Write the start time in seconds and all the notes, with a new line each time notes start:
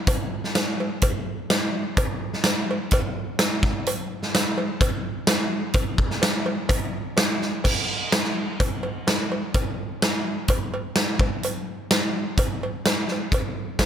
0.07 kick, closed hi-hat, cowbell
0.44 snare
0.55 snare, closed hi-hat, cowbell
0.80 cowbell
1.02 kick, closed hi-hat, cowbell
1.50 snare, closed hi-hat, cowbell
1.97 kick, closed hi-hat, cowbell
2.34 snare
2.44 snare, closed hi-hat, cowbell
2.71 cowbell
2.91 kick, closed hi-hat, cowbell
3.39 snare, closed hi-hat, cowbell
3.63 kick, snare
3.86 closed hi-hat, cowbell
4.23 snare
4.35 snare, closed hi-hat, cowbell
4.58 cowbell
4.81 kick, closed hi-hat, cowbell
5.27 snare, closed hi-hat, cowbell
5.73 kick, closed hi-hat, cowbell
5.98 kick
6.11 snare
6.22 snare, closed hi-hat, cowbell
6.46 cowbell
6.69 kick, closed hi-hat, cowbell
7.17 snare, closed hi-hat, cowbell
7.42 snare
7.64 kick, crash, cowbell
8.12 snare, closed hi-hat, cowbell
8.24 snare
8.60 kick, closed hi-hat, cowbell
8.83 cowbell
9.07 snare, closed hi-hat, cowbell
9.32 cowbell
9.54 kick, closed hi-hat, cowbell
10.02 snare, closed hi-hat, cowbell
10.48 kick, closed hi-hat, cowbell
10.74 cowbell
10.95 snare, closed hi-hat, cowbell
11.19 kick, cowbell
11.43 closed hi-hat, cowbell
11.91 snare, closed hi-hat, cowbell
12.38 kick, closed hi-hat, cowbell
12.63 cowbell
12.85 snare, closed hi-hat, cowbell
13.08 snare, cowbell
13.32 kick, closed hi-hat, cowbell
13.79 kick, snare, closed hi-hat, cowbell